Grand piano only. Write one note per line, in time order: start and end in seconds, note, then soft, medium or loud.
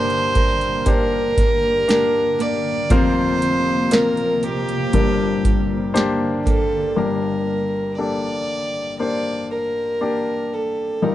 0.00 2.86 G1 medium
0.00 2.86 G2 medium
0.00 0.86 A#3 medium
0.00 0.86 D4 medium
0.00 0.86 G4 medium
0.00 1.89 A#4 loud
0.86 1.83 A#3 medium
0.86 1.83 D4 medium
0.86 1.83 G4 medium
0.86 1.83 C5 medium
1.88 2.85 A#3 medium
1.88 2.85 D4 medium
1.88 2.85 G4 medium
1.88 2.85 A#4 medium
2.90 4.90 F1 medium
2.90 4.90 F2 medium
2.90 3.87 A#3 medium
2.90 3.87 C4 medium
2.90 3.88 F4 medium
2.90 3.87 A#4 loud
3.92 4.89 A#3 medium
3.92 4.89 C4 medium
3.92 4.89 F4 medium
3.92 4.89 A#4 medium
4.93 6.93 G1 medium
4.93 6.93 G2 medium
4.93 5.90 A#3 medium
4.93 5.90 D4 medium
4.93 5.91 G4 medium
4.93 5.91 A#4 medium
5.94 6.91 A#3 medium
5.94 6.91 D4 medium
5.94 6.92 G4 medium
5.94 6.91 C5 medium
6.96 11.00 G1 medium
6.96 11.00 G2 soft
6.96 7.93 A#3 medium
6.96 7.94 D4 medium
6.96 7.94 G4 medium
6.96 7.94 A#4 medium
7.98 8.95 A#3 medium
7.98 8.95 D4 soft
7.98 8.95 G4 soft
7.98 8.95 A4 medium
8.99 9.97 A#3 medium
8.99 9.97 D4 soft
8.99 9.97 G4 soft
8.99 9.97 C5 medium
10.01 10.98 A#3 medium
10.01 10.98 D4 medium
10.01 10.99 G4 medium
10.01 10.99 D5 medium
11.02 11.15 G1 medium
11.02 11.15 G2 soft
11.02 11.15 D#4 medium
11.02 11.15 F4 medium
11.02 11.15 G4 soft
11.02 11.15 A#4 medium